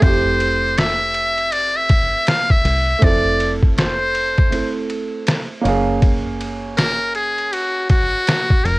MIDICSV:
0, 0, Header, 1, 5, 480
1, 0, Start_track
1, 0, Tempo, 750000
1, 15, Time_signature, 4, 2, 24, 8
1, 5625, End_track
2, 0, Start_track
2, 0, Title_t, "Muted trumpet"
2, 0, Program_c, 0, 59
2, 18, Note_on_c, 0, 72, 96
2, 502, Note_on_c, 0, 76, 104
2, 512, Note_off_c, 0, 72, 0
2, 975, Note_on_c, 0, 74, 97
2, 984, Note_off_c, 0, 76, 0
2, 1129, Note_on_c, 0, 76, 97
2, 1139, Note_off_c, 0, 74, 0
2, 1461, Note_on_c, 0, 77, 100
2, 1470, Note_off_c, 0, 76, 0
2, 1607, Note_on_c, 0, 76, 107
2, 1616, Note_off_c, 0, 77, 0
2, 1945, Note_on_c, 0, 74, 103
2, 1955, Note_off_c, 0, 76, 0
2, 2263, Note_off_c, 0, 74, 0
2, 2424, Note_on_c, 0, 72, 96
2, 3114, Note_off_c, 0, 72, 0
2, 4337, Note_on_c, 0, 70, 114
2, 4560, Note_off_c, 0, 70, 0
2, 4579, Note_on_c, 0, 68, 98
2, 4819, Note_on_c, 0, 66, 93
2, 4828, Note_off_c, 0, 68, 0
2, 5057, Note_off_c, 0, 66, 0
2, 5060, Note_on_c, 0, 66, 99
2, 5538, Note_on_c, 0, 70, 89
2, 5548, Note_off_c, 0, 66, 0
2, 5625, Note_off_c, 0, 70, 0
2, 5625, End_track
3, 0, Start_track
3, 0, Title_t, "Grand piano"
3, 0, Program_c, 1, 0
3, 0, Note_on_c, 1, 57, 65
3, 7, Note_on_c, 1, 60, 51
3, 22, Note_on_c, 1, 64, 54
3, 37, Note_on_c, 1, 67, 70
3, 1898, Note_off_c, 1, 57, 0
3, 1906, Note_off_c, 1, 60, 0
3, 1912, Note_on_c, 1, 57, 58
3, 1913, Note_off_c, 1, 64, 0
3, 1921, Note_off_c, 1, 67, 0
3, 1926, Note_on_c, 1, 60, 55
3, 1941, Note_on_c, 1, 64, 60
3, 1956, Note_on_c, 1, 69, 71
3, 2864, Note_off_c, 1, 57, 0
3, 2871, Note_off_c, 1, 60, 0
3, 2879, Note_off_c, 1, 64, 0
3, 2881, Note_on_c, 1, 57, 45
3, 2887, Note_off_c, 1, 69, 0
3, 2891, Note_on_c, 1, 60, 40
3, 2896, Note_on_c, 1, 64, 39
3, 2905, Note_on_c, 1, 69, 48
3, 3593, Note_on_c, 1, 58, 78
3, 3607, Note_on_c, 1, 61, 71
3, 3608, Note_off_c, 1, 57, 0
3, 3613, Note_off_c, 1, 60, 0
3, 3616, Note_off_c, 1, 64, 0
3, 3620, Note_off_c, 1, 69, 0
3, 3622, Note_on_c, 1, 77, 76
3, 3637, Note_on_c, 1, 68, 89
3, 5498, Note_off_c, 1, 58, 0
3, 5506, Note_off_c, 1, 61, 0
3, 5513, Note_off_c, 1, 77, 0
3, 5521, Note_off_c, 1, 68, 0
3, 5625, End_track
4, 0, Start_track
4, 0, Title_t, "Fingered electric bass"
4, 0, Program_c, 2, 33
4, 16, Note_on_c, 2, 29, 100
4, 1338, Note_off_c, 2, 29, 0
4, 1694, Note_on_c, 2, 36, 86
4, 1878, Note_off_c, 2, 36, 0
4, 1936, Note_on_c, 2, 29, 100
4, 3259, Note_off_c, 2, 29, 0
4, 3614, Note_on_c, 2, 30, 89
4, 4829, Note_off_c, 2, 30, 0
4, 5535, Note_on_c, 2, 29, 90
4, 5625, Note_off_c, 2, 29, 0
4, 5625, End_track
5, 0, Start_track
5, 0, Title_t, "Drums"
5, 13, Note_on_c, 9, 51, 74
5, 15, Note_on_c, 9, 36, 112
5, 77, Note_off_c, 9, 51, 0
5, 79, Note_off_c, 9, 36, 0
5, 257, Note_on_c, 9, 51, 67
5, 321, Note_off_c, 9, 51, 0
5, 497, Note_on_c, 9, 44, 49
5, 497, Note_on_c, 9, 51, 69
5, 503, Note_on_c, 9, 38, 102
5, 561, Note_off_c, 9, 44, 0
5, 561, Note_off_c, 9, 51, 0
5, 567, Note_off_c, 9, 38, 0
5, 732, Note_on_c, 9, 51, 56
5, 796, Note_off_c, 9, 51, 0
5, 882, Note_on_c, 9, 51, 37
5, 946, Note_off_c, 9, 51, 0
5, 973, Note_on_c, 9, 51, 74
5, 1037, Note_off_c, 9, 51, 0
5, 1211, Note_on_c, 9, 51, 62
5, 1215, Note_on_c, 9, 36, 105
5, 1275, Note_off_c, 9, 51, 0
5, 1279, Note_off_c, 9, 36, 0
5, 1451, Note_on_c, 9, 44, 54
5, 1451, Note_on_c, 9, 51, 72
5, 1461, Note_on_c, 9, 38, 118
5, 1515, Note_off_c, 9, 44, 0
5, 1515, Note_off_c, 9, 51, 0
5, 1525, Note_off_c, 9, 38, 0
5, 1601, Note_on_c, 9, 36, 83
5, 1665, Note_off_c, 9, 36, 0
5, 1697, Note_on_c, 9, 51, 70
5, 1761, Note_off_c, 9, 51, 0
5, 1932, Note_on_c, 9, 51, 76
5, 1934, Note_on_c, 9, 36, 117
5, 1996, Note_off_c, 9, 51, 0
5, 1998, Note_off_c, 9, 36, 0
5, 2177, Note_on_c, 9, 51, 63
5, 2241, Note_off_c, 9, 51, 0
5, 2321, Note_on_c, 9, 36, 84
5, 2385, Note_off_c, 9, 36, 0
5, 2417, Note_on_c, 9, 44, 50
5, 2417, Note_on_c, 9, 51, 69
5, 2423, Note_on_c, 9, 38, 109
5, 2481, Note_off_c, 9, 44, 0
5, 2481, Note_off_c, 9, 51, 0
5, 2487, Note_off_c, 9, 38, 0
5, 2655, Note_on_c, 9, 51, 55
5, 2719, Note_off_c, 9, 51, 0
5, 2801, Note_on_c, 9, 51, 38
5, 2804, Note_on_c, 9, 36, 92
5, 2865, Note_off_c, 9, 51, 0
5, 2868, Note_off_c, 9, 36, 0
5, 2895, Note_on_c, 9, 51, 70
5, 2959, Note_off_c, 9, 51, 0
5, 3134, Note_on_c, 9, 51, 60
5, 3198, Note_off_c, 9, 51, 0
5, 3371, Note_on_c, 9, 44, 55
5, 3371, Note_on_c, 9, 51, 76
5, 3380, Note_on_c, 9, 38, 110
5, 3435, Note_off_c, 9, 44, 0
5, 3435, Note_off_c, 9, 51, 0
5, 3444, Note_off_c, 9, 38, 0
5, 3617, Note_on_c, 9, 51, 71
5, 3681, Note_off_c, 9, 51, 0
5, 3854, Note_on_c, 9, 36, 116
5, 3854, Note_on_c, 9, 51, 68
5, 3918, Note_off_c, 9, 36, 0
5, 3918, Note_off_c, 9, 51, 0
5, 4099, Note_on_c, 9, 51, 64
5, 4163, Note_off_c, 9, 51, 0
5, 4337, Note_on_c, 9, 44, 47
5, 4337, Note_on_c, 9, 51, 65
5, 4342, Note_on_c, 9, 38, 107
5, 4401, Note_off_c, 9, 44, 0
5, 4401, Note_off_c, 9, 51, 0
5, 4406, Note_off_c, 9, 38, 0
5, 4575, Note_on_c, 9, 51, 56
5, 4639, Note_off_c, 9, 51, 0
5, 4725, Note_on_c, 9, 51, 36
5, 4789, Note_off_c, 9, 51, 0
5, 4818, Note_on_c, 9, 51, 73
5, 4882, Note_off_c, 9, 51, 0
5, 5053, Note_on_c, 9, 51, 66
5, 5055, Note_on_c, 9, 36, 100
5, 5117, Note_off_c, 9, 51, 0
5, 5119, Note_off_c, 9, 36, 0
5, 5293, Note_on_c, 9, 44, 54
5, 5293, Note_on_c, 9, 51, 72
5, 5303, Note_on_c, 9, 38, 111
5, 5357, Note_off_c, 9, 44, 0
5, 5357, Note_off_c, 9, 51, 0
5, 5367, Note_off_c, 9, 38, 0
5, 5442, Note_on_c, 9, 36, 87
5, 5506, Note_off_c, 9, 36, 0
5, 5539, Note_on_c, 9, 51, 66
5, 5603, Note_off_c, 9, 51, 0
5, 5625, End_track
0, 0, End_of_file